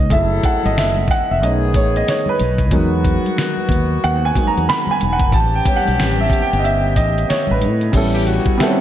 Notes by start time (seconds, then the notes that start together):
Already playing: C#2 A#3 C#4 D#4 D#5
0.10 F#1 F#3 A3 E4 G#4 A4 E5, kick, closed hi-hat, low conga
0.44 F#5, kick, closed hi-hat
0.63 G#1 D#5, closed hi-hat, high conga
0.75 F#1 E5, snare, closed hi-hat, muted conga
0.96 high conga
1.08 F#5, kick, closed hi-hat, low conga
1.31 E1 E5
1.40 B1 D#3 A3 B3 C#4 D#4 G#4 D#5, closed hi-hat, muted conga
1.74 A1 C#5, kick, closed hi-hat
1.96 D#5, closed hi-hat
2.06 C#5, snare, closed hi-hat, muted conga
2.26 B4, high conga, low conga
2.39 B1, closed hi-hat, high conga
2.58 kick, closed hi-hat
2.71 E2 D#3 F#3 G#3 B3 D#4 F#4 A#4, kick, closed hi-hat, muted conga, low conga
3.04 kick, closed hi-hat, muted conga
3.25 closed hi-hat, high conga
3.36 snare, closed hi-hat, muted conga
3.57 high conga
3.69 D#2, kick, closed hi-hat, muted conga, low conga
4.04 D#2 F#5, closed hi-hat
4.25 G#5
4.35 F#3 G#3 A#3 D#4, kick, closed hi-hat, muted conga
4.47 A#5
4.57 E2, closed hi-hat
4.69 B5, snare, closed hi-hat
4.87 G#5, high conga, low conga
5.00 E1, closed hi-hat, muted conga, high conga
5.13 F#5
5.20 kick, closed hi-hat
5.32 A1 E3 C#4 G4 A5, kick, closed hi-hat, muted conga, low conga
5.55 G5
5.65 G3 B3 C#4, kick, closed hi-hat, muted conga
5.76 F#5
5.86 B1, closed hi-hat, high conga
5.97 A1, snare, closed hi-hat, muted conga
6.18 E5, high conga
6.29 kick, closed hi-hat, low conga
6.42 G5
6.53 G1, closed hi-hat
6.59 D#5, muted conga
6.64 E5, closed hi-hat
6.96 A1 D#5, kick, closed hi-hat
7.18 closed hi-hat
7.28 C#5, muted fretless electric bass stroke, snare, closed hi-hat, muted conga
7.47 A1 B4, high conga, low conga
7.60 A2, closed hi-hat, muted conga, high conga
7.81 closed hi-hat
7.92 A1 G3 B3 C#4 E4, kick, closed hi-hat, crash, muted conga, low conga
7.97 A4
8.14 E3 C#4 G4
8.26 C#3 B3 F#4, closed hi-hat, muted conga
8.46 kick, high conga
8.57 G3 B3 C4 E4, snare, closed hi-hat
8.63 A4
8.67 C#4